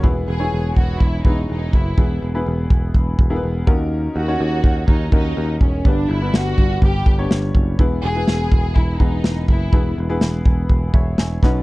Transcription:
<<
  \new Staff \with { instrumentName = "Upright piano" } { \time 4/4 \key e \lydian \tempo 4 = 124 << { r1 | r1 | r1 | r1 |
r1 | r2 r8 <cis'' e''>8 <e'' gis''>4 | } \\ { <b e' gis' b'>8. <b e' gis' cis''>4. r16 <b e' gis' b'>4~ <b e' gis' b'>16 r16 | <b e' gis' b'>8. <b e' gis' b'>4.~ <b e' gis' b'>16 r16 <b e' gis' ais' b'>8. <cis' dis' fis' ais'>8~ | <cis' dis' fis' ais'>8 r16 <cis' dis' fis' cis''>4. r16 <cis' dis' fis' ais'>4~ <cis' dis' fis' ais'>16 r16 | <b d' g' b'>8. <g b d' b'>4.~ <g b d' b'>16 r16 <b d' g' cis''>4 r16 |
<b e' gis' b'>8. <b e' gis' b'>4. r16 <e b gis' b'>4~ <e b gis' b'>16 r16 | <b e' gis' b'>8. <b e' gis' b'>4.~ <b e' gis' b'>16 r4 <cis' dis' fis' b'>8 | } >> }
  \new Staff \with { instrumentName = "Upright piano" } { \clef bass \time 4/4 \key e \lydian e4. r2 r8 | e4. r2 dis8~ | dis4 r2. | g,4. r2 r8 |
e4. r2 r8 | e4. r2 b,8 | }
  \new Staff \with { instrumentName = "Violin section" } { \time 4/4 \key e \lydian r8 gis'4 fis'8 e'8 dis'8 dis'8 e'8~ | e'8 r2. r8 | r8 fis'4. dis'8 dis'4 cis'8 | d'8 e'8 fis'4 g'4 r4 |
r8 gis'4. e'8 dis'4 e'8~ | e'8 r2. r8 | }
  \new Staff \with { instrumentName = "Picked electric bass" } { \clef bass \time 4/4 \key e \lydian e,,8 e,,8 e,,8 e,,8 e,,8 e,,8 e,,8 fis,,8 | e,,8 e,,8 e,,8 e,,8 e,,8 e,,8 e,,8 dis,8~ | dis,8 dis,8 dis,8 dis,8 dis,8 dis,8 dis,8 e,,8 | g,,8 g,,8 g,,8 g,,8 g,,8 g,,8 g,,8 fis,,8 |
e,,8 e,,8 e,,8 e,,8 e,,8 e,,8 e,,8 fis,,8 | e,,8 e,,8 e,,8 e,,8 e,,8 e,,8 e,,8 b,,8 | }
  \new DrumStaff \with { instrumentName = "Drums" } \drummode { \time 4/4 bd4 r8 bd8 bd8 bd8 r8 bd8 | bd4 r8 bd8 bd8 bd8 r8 bd8 | r4 r8 bd8 bd8 bd8 r8 bd8 | bd4 sn8 bd8 bd8 bd8 sn8 bd8 |
bd4 sn8 bd8 bd8 bd8 sn8 bd8 | bd4 sn8 bd8 bd8 bd8 sn8 <bd sn>8 | }
>>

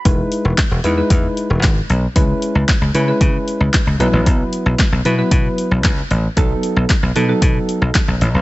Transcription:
<<
  \new Staff \with { instrumentName = "Synth keys" } { \time 4/4 \key b \mixolydian \tempo 4 = 114 <gis dis' e' b'>4 r8 <gis dis' e' b'>16 <gis dis' e' b'>4. r8. | <gis cis' e' b'>4 r8 <gis cis' e' b'>16 <gis cis' e' b'>4. r16 <fis b e' b'>8~ | <fis b e' b'>4 r8 <fis b e' b'>16 <fis b e' b'>4. r8. | <fis b dis' a'>4 r8 <fis b dis' a'>16 <fis b dis' a'>4. r8. | }
  \new Staff \with { instrumentName = "Slap bass" } { \clef bass \time 4/4 \key b \mixolydian e,,8 r16 e,,16 r16 e,,16 e,8 e,8 r16 e,,16 gis,,8 b,,8 | cis,8 r16 cis,16 r16 cis,16 cis8 cis8 r16 cis,16 r16 cis,16 b,,16 a,,16 | b,,8 r16 b,,16 r16 b,,16 b,8 b,8 r16 b,,16 cis,8 a,,8 | b,,8 r16 b,,16 r16 b,,16 b,8 b,8 r16 b,,16 r16 b,,16 a,,16 b,,16 | }
  \new DrumStaff \with { instrumentName = "Drums" } \drummode { \time 4/4 <hh bd>8 hh8 <hc hh bd sn>8 hh8 <hh bd>8 hh8 <hc hh bd sn>8 hh8 | <hh bd>8 hh8 <hc hh bd sn>8 hh8 <hh bd>8 hh8 <hc hh bd sn>8 hh8 | <hh bd>8 hh8 <hc hh bd sn>8 hh8 <hh bd>8 hh8 <hc hh bd sn>8 hh8 | <hh bd>8 hh8 <hc hh bd sn>8 hh8 <hh bd>8 hh8 <hc hh bd sn>8 hh8 | }
>>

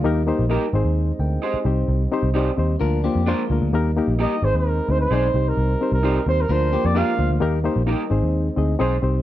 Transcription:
<<
  \new Staff \with { instrumentName = "Flugelhorn" } { \time 4/4 \key aes \lydian \tempo 4 = 130 r1 | r1 | r4 ees''8 c''16 bes'8. c''16 c''4 bes'16~ | bes'8. bes'8. c''16 bes'16 c''8. d''16 f''8. r16 |
r1 | }
  \new Staff \with { instrumentName = "Clean electric guitar" } { \time 4/4 \key aes \lydian r4 <ees' g' bes'>8 r4. <ees' aes' c''>8 r8 | r4 <ees' g' c''>8 r4. <d' f' bes'>8 r8 | r4 <ees' g' bes'>8 r4. <ees' aes' c''>8 r8 | r4 <ees' g' c''>8 r4. <d' f' bes'>8 r8 |
r4 <ees' g' bes'>8 r4. <ees' aes' c''>8 r8 | }
  \new Staff \with { instrumentName = "Reed electric piano" } { \time 4/4 \key aes \lydian << { r2 r8 <bes' g''>8 <g' ees''>4 | r1 | r1 | r1 |
r1 | } \\ { <bes ees' g' bes'>8 <bes ees' g' c''>8 <bes ees' g' bes'>8 <c' ees' aes' c''>4 r4 <c' ees' g' c''>8~ | <c' ees' g' c''>8 <c' ees' g' c''>8 <c' ees' g' d''>8 <c' ees' g' c''>8 <bes d' f' bes'>8 <bes d' f' c''>8 <bes d' f' c''>8 <bes d' f' bes'>8 | <bes ees' g' bes'>8 <bes ees' g' bes'>8 <bes ees' g' bes'>8 <c' ees' aes' ces'' c''>4 <c' ees' aes' c''>8 <c' ees' aes' d''>8 <c' ees' g' c''>8~ | <c' ees' g' c''>8 <c' ees' g' c''>8 <c' ees' g' d''>8 <c' ees' g' c''>8 <bes d' f' bes'>8 <bes d' f' bes'>8 <bes d' f' g'>8 <bes d' f' c''>8 |
<bes ees' g' bes'>8 <bes ees' g' c''>8 <bes ees' g' bes'>8 <c' ees' aes' c''>4 <c' ees' aes' ees''>8 <c' ees' aes' c''>8 <c' ees' g' c''>8 | } >> }
  \new Staff \with { instrumentName = "Clean electric guitar" } { \time 4/4 \key aes \lydian r1 | r2 <d' bes'>8 <bes g'>8 <aes f'>4 | r1 | r2 <d' bes'>8 <bes g'>8 <aes f'>4 |
r1 | }
  \new Staff \with { instrumentName = "Tonewheel organ" } { \time 4/4 \key aes \lydian ees'1~ | ees'2 d'2 | ees'1~ | ees'2 d'2 |
ees'1 | }
  \new Staff \with { instrumentName = "Tonewheel organ" } { \clef bass \time 4/4 \key aes \lydian << { bes4. c'2~ c'8~ | c'2 bes2~ | bes4. c'2~ c'8~ | c'2 bes2~ |
bes4. c'2~ c'8 | } \\ { g4. aes2 g8~ | g2 f2 | g4. aes2 g8~ | g2 f2 |
g4. aes2 g8 | } >> }
  \new Staff \with { instrumentName = "Picked electric bass" } { \clef bass \time 4/4 \key aes \lydian ees,8. bes,,8 r16 aes,,16 ees,8. d,8 r8 c,8 | c,8 r16 c,8. ees,8 d,8. f,8 r16 d,16 d,16 | ees,8. bes,,8 r16 aes,,16 ees,8. d,8 ces,8 c,8 | c,8 r16 c,8. ees,8 d,8. f,8 r16 d,16 d,16 |
ees,8. bes,,8 r16 aes,,16 ees,8. d,8 ces,8 c,8 | }
>>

